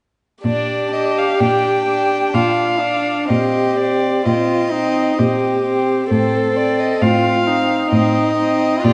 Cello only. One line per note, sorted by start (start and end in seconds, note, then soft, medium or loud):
0.44 1.27 A#2 soft
1.40 2.21 A#2 soft
2.34 3.16 A#2 soft
3.29 4.12 A#2 soft
4.26 5.05 A#2 soft
5.19 5.97 A#2 soft
6.11 6.89 A2 soft
7.02 7.79 A2 soft
7.92 8.71 A2 soft
8.84 8.93 A#2 soft